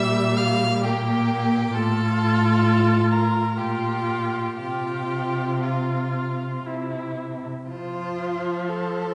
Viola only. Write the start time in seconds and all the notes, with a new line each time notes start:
Already playing: G3
0.86 A#3
1.76 F4
3.58 F4
4.57 F4
5.64 F4
6.66 E4
7.69 F3